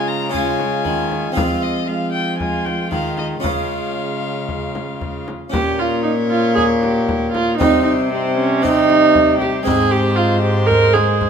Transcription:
0.00 0.81 C#3 soft
0.00 0.86 C#3 medium
0.00 0.33 G#3 medium
0.00 0.28 C#4 soft
0.00 0.29 F4 soft
0.00 0.33 F4 medium
0.00 0.29 G#4 soft
0.08 0.33 A#5 medium
0.29 1.34 G#3 medium
0.29 1.31 C#4 soft
0.29 1.32 F4 soft
0.29 1.34 F4 medium
0.29 1.33 G#4 soft
0.29 1.34 G#5 medium
0.34 frame drum soft
0.60 frame drum soft
0.84 1.35 D#3 medium
0.84 1.32 D#3 medium
0.84 frame drum soft
1.12 frame drum soft
1.32 2.93 F3 medium
1.32 2.85 C4 soft
1.32 3.38 F4 soft
1.32 1.87 F4 medium
1.32 3.39 G#4 soft
1.36 2.87 F3 soft
1.36 1.87 G#3 medium
1.36 1.64 F5 medium
1.36 frame drum medium
1.62 1.89 D#5 medium
1.87 2.39 G#3 medium
1.87 2.38 F4 soft
1.87 2.11 F5 medium
2.12 2.37 G5 medium
2.38 2.90 G#3 medium
2.38 2.90 F4 medium
2.38 2.66 G#5 medium
2.38 frame drum soft
2.64 2.91 G5 medium
2.64 frame drum soft
2.91 3.39 D#3 soft
2.91 3.43 D#3 medium
2.91 3.43 G#3 soft
2.91 3.42 F4 medium
2.91 3.17 F5 medium
2.91 frame drum soft
3.18 3.26 D#5 medium
3.18 frame drum soft
3.40 5.29 C#3 soft
3.40 5.30 C#3 soft
3.40 5.48 C#4 soft
3.40 5.48 F4 soft
3.40 5.49 G#4 soft
3.40 5.24 F5 medium
3.40 frame drum medium
3.44 5.24 G#3 medium
3.44 5.30 F4 medium
4.49 frame drum soft
4.75 frame drum soft
5.01 frame drum soft
5.28 frame drum soft
5.50 7.62 A#2 medium
5.50 7.56 A#2 soft
5.50 7.56 A#3 medium
5.50 7.54 C#4 soft
5.50 5.81 G4 loud
5.54 7.57 C#5 medium
5.54 frame drum medium
5.79 6.03 F4 medium
6.03 6.11 D#4 medium
6.30 6.54 F4 medium
6.55 6.63 G#4 loud
6.55 frame drum soft
6.81 7.32 G4 medium
6.81 frame drum soft
7.09 frame drum medium
7.32 7.57 F4 medium
7.32 frame drum soft
7.58 9.68 C3 medium
7.58 9.62 C3 medium
7.58 8.11 G3 medium
7.58 8.59 C4 medium
7.58 7.83 D#4 loud
7.58 8.60 D#4 soft
7.58 8.11 C5 medium
7.58 frame drum medium
7.83 7.91 D#4 medium
8.10 8.62 G3 medium
8.10 8.36 C4 medium
8.10 8.62 C5 medium
8.37 8.64 C#4 medium
8.62 9.67 G3 medium
8.62 9.62 C4 soft
8.62 9.39 D#4 loud
8.62 9.63 D#4 medium
8.62 9.64 C5 medium
8.62 frame drum soft
8.90 frame drum soft
9.15 frame drum medium
9.39 9.65 G4 medium
9.39 frame drum medium
9.63 11.30 G#2 medium
9.63 11.30 G#3 soft
9.63 11.30 G#3 medium
9.63 11.30 C4 soft
9.63 11.30 D#4 soft
9.63 9.93 G#4 loud
9.63 11.30 C5 medium
9.67 frame drum medium
9.91 10.17 G4 loud
10.16 10.41 F4 medium
10.41 10.68 G4 loud
10.67 10.95 A#4 loud
10.67 frame drum medium
10.94 11.30 G#4 medium
10.94 frame drum medium
11.21 frame drum medium

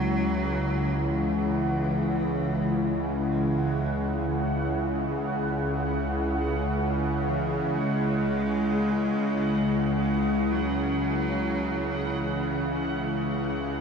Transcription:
0.00 13.81 C#2 medium
0.00 13.81 C#3 medium
0.00 1.09 F#3 loud
0.00 13.81 G#3 medium
0.00 13.81 E4 medium
0.00 13.81 F#5 medium
1.08 3.33 E3 loud
3.32 4.42 G#3 medium
7.20 7.78 E3 medium
7.77 9.97 G#3 loud
9.98 10.53 G#3 loud
10.52 12.19 F#3 loud
12.17 13.29 E3 medium

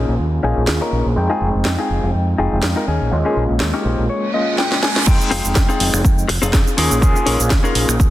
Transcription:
0.00 0.41 A#3 medium
0.00 0.14 C#4 medium
0.00 0.41 C#4 medium
0.00 0.14 D#4 medium
0.00 0.41 F4 medium
0.00 0.14 G#4 medium
0.00 0.41 G#4 loud
0.08 0.16 A#1 medium
0.19 0.38 D#2 medium
0.43 0.53 A#1 medium
0.43 1.14 A#3 medium
0.43 0.62 C#4 loud
0.43 1.14 C#4 medium
0.43 0.63 D#4 medium
0.43 1.14 F4 medium
0.43 1.15 G#4 medium
0.43 0.63 G#4 loud
0.57 0.65 A#1 medium
0.67 0.78 D#2 medium
0.67 snare loud
0.81 1.06 C#4 medium
0.81 1.06 D#4 medium
0.81 1.06 A#4 medium
0.92 1.02 A#1 medium
1.06 1.14 A#1 medium
1.16 1.27 F2 medium
1.16 2.36 G#3 medium
1.16 2.36 C4 medium
1.16 2.36 D#4 medium
1.16 2.36 G5 loud
1.30 1.48 D#4 loud
1.30 1.48 F4 loud
1.30 1.48 G#4 loud
1.41 1.51 F1 medium
1.55 1.63 F1 medium
1.65 1.75 F2 medium
1.65 muted clean electric guitar stroke soft
1.65 snare loud
1.79 2.09 D#4 medium
1.79 2.09 F4 medium
1.79 2.09 G#4 loud
1.90 2.00 F1 medium
2.03 2.11 F1 loud
2.15 2.33 F2 medium
2.38 2.49 F1 medium
2.38 2.86 G#3 medium
2.38 2.86 C4 medium
2.38 2.58 D#4 loud
2.38 2.86 D#4 medium
2.38 2.58 F4 loud
2.38 2.58 G#4 loud
2.38 2.86 G5 medium
2.52 2.60 F1 medium
2.63 2.73 F2 loud
2.63 snare loud
2.76 2.86 D#4 medium
2.76 2.87 F4 medium
2.76 2.88 A#4 medium
2.87 2.97 D#2 medium
2.87 3.17 C#4 medium
2.87 3.17 D#4 medium
2.87 3.18 G#4 loud
3.01 3.09 A#1 medium
3.11 3.22 D#2 medium
3.11 4.32 G#3 loud
3.11 4.31 A#3 medium
3.11 4.31 C#4 medium
3.11 4.32 F4 medium
3.25 3.43 C#4 loud
3.25 3.43 D#4 medium
3.25 3.43 G#4 loud
3.37 3.46 A#1 medium
3.50 3.58 A#1 medium
3.60 3.71 D#2 medium
3.60 muted clean electric guitar stroke soft
3.60 snare loud
3.74 4.04 C#4 medium
3.74 4.04 D#4 medium
3.74 4.04 G4 loud
3.85 3.95 A#1 medium
3.85 4.08 C5 medium
3.99 4.07 A#1 medium
4.10 4.32 C#5 medium
4.10 reverse cymbal medium
4.33 5.05 G#3 medium
4.33 5.04 A#3 medium
4.33 5.04 C#4 medium
4.33 5.05 F4 medium
4.33 4.57 D#5 medium
4.58 4.81 G5 medium
4.58 snare medium
4.72 snare medium
4.83 5.05 G#5 medium
4.83 snare medium
4.96 snare medium
5.06 5.17 F2 medium
5.06 6.26 G#3 loud
5.06 6.26 C4 medium
5.06 6.27 D#4 medium
5.06 6.27 G5 loud
5.06 kick loud
5.06 crash loud
5.06 shaker medium
5.21 shaker soft
5.31 5.41 F1 medium
5.31 5.45 C4 loud
5.31 5.45 D#4 medium
5.31 5.45 F4 medium
5.31 5.45 G#4 loud
5.31 open hi-hat loud
5.45 5.53 F1 medium
5.45 shaker medium
5.55 5.66 F2 medium
5.55 muted clean electric guitar stroke soft
5.55 kick loud
5.55 snare loud
5.55 shaker medium
5.69 5.99 C4 medium
5.69 5.99 D#4 medium
5.69 5.99 F4 medium
5.69 5.99 G#4 loud
5.69 shaker soft
5.80 5.90 F1 loud
5.80 open hi-hat loud
5.94 6.02 F1 loud
5.94 finger snap medium
5.94 shaker medium
6.05 6.23 F2 medium
6.05 kick loud
6.05 shaker medium
6.18 shaker soft
6.28 6.39 F1 medium
6.28 finger snap medium
6.28 muted clean electric guitar stroke loud
6.28 open hi-hat loud
6.42 6.51 F1 loud
6.42 6.77 C4 medium
6.42 6.76 D#4 medium
6.42 6.78 F4 medium
6.42 6.77 G#4 medium
6.42 shaker medium
6.53 6.63 F2 medium
6.53 kick loud
6.53 snare loud
6.53 shaker medium
6.67 shaker soft
6.77 6.88 D#2 medium
6.77 6.99 A#3 medium
6.77 7.18 C#4 loud
6.77 7.00 C#4 medium
6.77 7.18 D#4 medium
6.77 7.00 F4 medium
6.77 7.18 G#4 medium
6.77 7.00 G#4 medium
6.77 7.18 A#4 medium
6.77 open hi-hat loud
6.91 6.99 A#1 medium
6.91 shaker medium
7.01 8.10 A#3 loud
7.01 8.10 C#4 medium
7.01 8.10 F4 medium
7.01 8.10 G#4 loud
7.01 kick loud
7.01 shaker medium
7.16 shaker soft
7.26 7.36 A#1 medium
7.26 7.40 C#4 loud
7.26 7.40 D#4 loud
7.26 7.40 G#4 loud
7.26 7.40 A#4 loud
7.26 open hi-hat loud
7.40 7.48 A#1 medium
7.40 shaker medium
7.50 kick loud
7.50 snare loud
7.50 shaker medium
7.64 7.94 C#4 loud
7.64 7.94 D#4 medium
7.64 7.94 G#4 medium
7.64 7.95 A#4 medium
7.64 shaker soft
7.75 7.85 A#1 loud
7.75 open hi-hat loud
7.89 7.97 A#1 loud
7.89 finger snap medium
7.89 shaker medium
8.00 kick loud
8.00 shaker medium

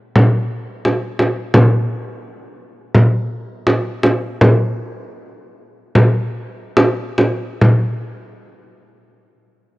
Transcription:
0.16 frame drum medium
0.85 frame drum medium
1.19 frame drum medium
1.54 frame drum loud
2.95 frame drum medium
3.67 frame drum medium
4.03 frame drum medium
4.41 frame drum medium
5.95 frame drum medium
6.77 frame drum medium
7.18 frame drum medium
7.61 frame drum medium

